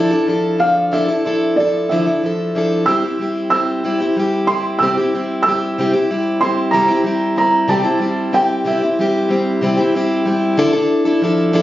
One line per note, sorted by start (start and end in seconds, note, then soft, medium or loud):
0.00 0.12 D3 medium
0.00 0.12 F3 medium
0.00 0.12 D4 medium
0.00 0.11 E4 medium
0.00 0.62 A5 medium
0.11 0.27 D4 soft
0.11 0.27 E4 soft
0.11 0.28 A4 soft
0.27 0.57 F3 soft
0.27 0.59 D4 soft
0.27 0.61 E4 medium
0.27 0.60 A4 medium
0.58 0.91 F3 soft
0.58 0.92 D4 soft
0.58 0.93 A4 medium
0.58 0.93 F5 medium
0.91 1.08 D3 medium
0.91 1.08 F3 medium
0.91 1.09 D4 medium
0.91 1.09 E4 medium
0.91 1.07 A4 medium
0.91 1.59 E5 medium
1.08 1.24 D4 soft
1.08 1.25 E4 soft
1.08 1.25 A4 medium
1.24 1.56 F3 medium
1.24 1.57 D4 medium
1.24 1.58 E4 medium
1.24 1.58 A4 medium
1.56 1.90 F3 soft
1.56 1.90 D4 medium
1.56 1.91 E4 soft
1.56 1.90 D5 medium
1.60 1.91 A4 soft
1.89 2.06 D3 soft
1.89 2.06 F3 medium
1.89 2.07 D4 medium
1.89 2.06 E4 medium
1.89 2.05 A4 medium
1.89 2.58 E5 medium
2.06 2.23 D4 soft
2.06 2.23 E4 soft
2.06 2.22 A4 soft
2.23 2.54 F3 soft
2.23 2.55 D4 soft
2.23 2.55 E4 soft
2.23 2.56 A4 soft
2.55 2.86 F3 soft
2.55 2.87 D4 soft
2.55 2.87 E4 soft
2.55 2.88 A4 medium
2.86 3.03 C3 medium
2.86 3.03 G3 medium
2.86 3.03 C4 medium
2.86 3.03 E4 medium
2.86 3.03 G4 medium
2.86 3.49 E6 medium
3.04 3.19 C4 soft
3.04 3.20 E4 soft
3.04 3.19 G4 soft
3.19 3.50 G3 medium
3.19 3.50 C4 medium
3.19 3.52 E4 medium
3.19 3.52 G4 soft
3.50 3.83 G3 soft
3.50 3.83 C4 medium
3.50 3.84 E4 medium
3.50 3.85 G4 medium
3.50 4.43 E6 medium
3.84 3.99 C3 medium
3.84 4.00 G3 medium
3.84 4.00 C4 medium
3.84 4.00 E4 medium
3.84 3.99 G4 medium
4.00 4.16 C4 soft
4.00 4.16 E4 soft
4.00 4.16 G4 soft
4.17 4.46 G3 soft
4.17 4.48 C4 soft
4.17 4.48 E4 medium
4.17 4.49 G4 medium
4.47 4.80 G3 soft
4.47 4.81 C4 medium
4.47 4.81 E4 medium
4.47 4.81 G4 medium
4.47 4.77 C6 medium
4.79 4.96 C3 medium
4.79 4.97 G3 medium
4.79 4.97 C4 medium
4.79 5.41 E6 medium
4.83 4.97 E4 medium
4.83 4.96 G4 medium
4.97 5.13 C4 soft
4.97 5.14 E4 soft
4.97 5.13 G4 soft
5.13 5.44 G3 medium
5.13 5.45 C4 medium
5.13 5.46 E4 medium
5.13 5.46 G4 medium
5.43 5.77 G3 medium
5.43 6.36 E6 medium
5.47 5.78 C4 medium
5.47 5.78 E4 medium
5.47 5.78 G4 medium
5.78 5.93 C3 medium
5.78 5.94 G3 medium
5.78 5.94 C4 medium
5.78 5.94 E4 medium
5.78 5.92 G4 medium
5.94 6.10 C4 soft
5.94 6.10 E4 soft
5.94 6.09 G4 soft
6.10 6.40 G3 medium
6.10 6.41 C4 soft
6.10 6.42 E4 medium
6.10 6.42 G4 medium
6.41 6.72 G3 soft
6.41 6.72 C4 medium
6.41 6.73 E4 medium
6.41 6.73 G4 medium
6.41 6.74 C6 medium
6.71 6.89 C3 medium
6.71 6.89 G3 medium
6.71 6.89 C4 medium
6.71 6.89 E4 medium
6.71 6.87 G4 medium
6.71 7.36 A#5 medium
6.88 7.04 C4 soft
6.88 7.05 E4 soft
6.88 7.04 G4 medium
7.04 7.35 G3 medium
7.04 7.36 C4 medium
7.04 7.37 E4 medium
7.04 7.38 G4 medium
7.36 7.67 G3 medium
7.36 7.68 C4 medium
7.36 7.68 E4 medium
7.36 7.69 G4 soft
7.36 7.71 A#5 medium
7.68 7.85 C3 medium
7.68 7.85 G3 medium
7.68 7.85 C4 medium
7.68 7.83 E4 medium
7.68 7.81 G4 medium
7.68 8.35 A5 medium
7.82 7.99 C4 soft
7.82 8.00 E4 soft
7.82 8.00 G4 medium
7.99 8.31 G3 medium
7.99 8.32 C4 medium
7.99 8.33 E4 medium
7.99 8.34 G4 soft
8.32 8.64 G3 medium
8.32 8.65 C4 medium
8.32 8.65 E4 medium
8.32 8.66 G4 medium
8.32 8.67 G5 medium
8.64 8.81 C3 medium
8.64 8.81 G3 medium
8.64 8.82 C4 medium
8.64 8.82 E4 medium
8.64 8.81 G4 medium
8.64 9.91 E5 medium
8.82 8.98 C4 soft
8.82 8.99 E4 soft
8.82 8.98 G4 soft
8.99 9.28 G3 medium
8.99 9.29 C4 medium
8.99 9.30 E4 medium
8.99 9.31 G4 medium
9.29 9.61 G3 medium
9.29 9.62 C4 medium
9.29 9.62 E4 medium
9.29 9.63 G4 medium
9.61 9.78 C3 medium
9.61 9.78 G3 medium
9.61 9.79 C4 medium
9.61 9.78 E4 medium
9.61 9.76 G4 medium
9.77 9.94 C4 soft
9.77 9.95 E4 soft
9.77 9.94 G4 soft
9.94 10.24 G3 medium
9.94 10.25 C4 medium
9.94 10.26 E4 medium
9.94 10.27 G4 medium
10.25 10.58 G3 medium
10.25 10.58 C4 medium
10.25 10.58 E4 medium
10.25 10.58 G4 medium
10.57 10.74 D3 medium
10.57 10.74 F3 medium
10.57 10.74 D4 medium
10.57 10.74 E4 loud
10.57 10.72 A4 medium
10.73 11.06 D4 medium
10.73 11.05 E4 medium
10.73 11.04 A4 medium
11.05 11.22 D4 soft
11.05 11.22 E4 medium
11.05 11.22 A4 medium
11.22 11.52 F3 medium
11.22 11.52 D4 medium
11.22 11.53 E4 medium
11.22 11.54 A4 medium
11.53 11.62 D3 medium
11.53 11.62 F3 medium
11.53 11.62 D4 medium
11.53 11.62 E4 medium
11.53 11.62 A4 medium